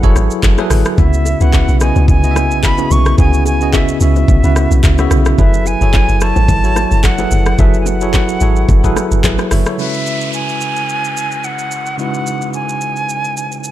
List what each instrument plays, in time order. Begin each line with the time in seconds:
Already playing: tine electric piano F#3 E4 G#4 A4 B4, flute F#5
0.03 log drum bass F#1, tine electric piano F#3 E4 G#4 A4 C#5, kick, shaker
0.15 log drum bass G#1, cross-stick, low bongo, shaker
0.31 shaker
0.43 log drum bass F#1, kick, clap, high bongo, shaker
0.58 tine electric piano F#3 E4 G#4 A4 B4, cross-stick, low bongo, shaker
0.70 log drum bass G#1, cross-stick, open hi-hat, low conga, shaker
0.85 cross-stick, shaker
0.98 log drum bass C#2, tine electric piano C#3 B3 E4 F#4 E5, flute E5, kick, low conga, shaker
1.14 shaker
1.25 high bongo, shaker
1.41 log drum bass C#2, tine electric piano C#3 B3 E4 F#4 B4, flute F#5, shaker
1.53 kick, clap, high bongo, shaker
1.68 log drum bass B1, shaker
1.81 tine electric piano C#3 B3 E4 F#4 D#5, flute G#5, cross-stick, shaker
1.96 log drum bass C#2, low bongo, shaker
2.08 log drum bass C#2, flute G#5, kick, low conga, shaker
2.23 tine electric piano C#3 B3 E4 F#4 D#5, shaker
2.31 tine electric piano E5
2.36 cross-stick, low bongo, shaker
2.51 log drum bass B1, shaker
2.63 flute B5, kick, clap, high bongo, shaker
2.78 tine electric piano C#3 B3 E4 F#4 G#4, low bongo, shaker
2.90 log drum bass B1, flute C#6, low conga, shaker
3.06 cross-stick, shaker
3.18 log drum bass C#2, tine electric piano C#3 B3 E4 F#4 G#4, flute G#5, kick, low conga, shaker
3.34 shaker
3.46 flute G#5, high bongo, shaker
3.61 tine electric piano C#3 B3 E4 F#4 D#5, shaker
3.73 flute E5, kick, clap, high bongo, shaker
3.88 shaker
4.00 log drum bass C#2, tine electric piano C#3 B3 E4 F#4 E5, flute E5, shaker
4.16 low bongo, shaker
4.28 log drum bass B1, kick, low conga, shaker
4.43 log drum bass C#2, tine electric piano C#3 B3 E4 F#4 B4, shaker
4.56 cross-stick, low bongo, shaker
4.71 log drum bass B1, shaker
4.83 log drum bass C#2, kick, clap, high bongo, shaker
4.98 tine electric piano C#3 B3 E4 F#4 E5, cross-stick, low bongo, shaker
5.11 log drum bass B1, cross-stick, low conga, shaker
5.26 cross-stick, shaker
5.38 log drum bass F#1, tine electric piano F#3 E4 G#4 A4 B4, flute E5, kick, low conga, shaker
5.54 shaker
5.66 flute G#5, high bongo, shaker
5.81 log drum bass F#1, tine electric piano F#3 E4 G#4 A4 C#5, shaker
5.93 kick, clap, high bongo, shaker
6.09 log drum bass F#1, shaker
6.21 tine electric piano F#3 E4 F#4 A4 C#5, flute A5, cross-stick, shaker
6.36 log drum bass G#1, low bongo, shaker
6.49 log drum bass G#1, kick, low conga, shaker
6.64 tine electric piano F#3 E4 F#4 A4 C#5, shaker
6.76 cross-stick, low bongo, shaker
6.91 log drum bass F#1, shaker
7.04 flute F#5, kick, clap, high bongo, shaker
7.18 tine electric piano F#3 E4 G#4 A4 B4, low bongo, shaker
7.31 log drum bass F#1, low conga, shaker
7.46 cross-stick, shaker
7.58 log drum bass F#1, tine electric piano F#3 E4 G#4 A4 B4, flute E5, kick, low conga, shaker
7.74 shaker
7.81 flute G#5
7.86 flute F#5, high bongo, low bongo, shaker
8.01 tine electric piano F#3 E4 G#4 A4 C#5, shaker
8.13 kick, clap, high bongo, shaker
8.29 shaker
8.41 log drum bass G#1, tine electric piano F#3 E4 G#4 A4 C#5, shaker
8.56 shaker
8.69 log drum bass F#1, kick, low conga, shaker
8.83 log drum bass G#1, tine electric piano F#3 E4 G#4 A4 B4, kick, shaker
8.96 cross-stick, low bongo, shaker
9.11 log drum bass F#1, shaker
9.24 log drum bass G#1, tine electric piano G#4 B4, kick, clap, high bongo, shaker
9.38 cross-stick, low bongo, shaker
9.51 log drum bass F#1, tine electric piano C#5 E5, cross-stick, open hi-hat, low conga, shaker
9.66 tine electric piano A4 C#5, cross-stick, shaker
9.78 tine electric piano C#3 G#3 C#4 E4 F#4 B4, flute E5, downlifter, shaker
9.94 shaker
10.06 shaker
10.21 shaker
10.33 flute G#5, shaker
10.49 shaker
10.61 shaker
10.76 shaker
10.89 shaker
11.04 shaker
11.17 shaker
11.32 shaker
11.44 flute F#5, shaker
11.59 shaker
11.72 shaker
11.86 shaker
11.98 tine electric piano C#3 G#3 D#4 E4 F#4 B4, flute F#5, shaker
12.14 shaker
12.27 shaker
12.42 shaker
12.54 flute G#5, shaker
12.69 shaker
12.81 shaker
12.96 shaker
13.09 shaker
13.24 shaker
13.37 shaker
13.52 shaker
13.64 shaker